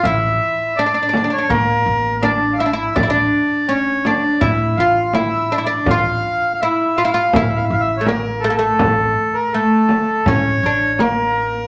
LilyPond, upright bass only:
\new Staff \with { instrumentName = "Upright bass" } { \clef bass \time 4/4 \tempo 4 = 82 a,,8 r4. a,8 a,,4. | a,,8 r4. a,8 a,,4. | a,,8 r4. a,8 a,,4. | a,,8 r4. a,8 a,,4. | }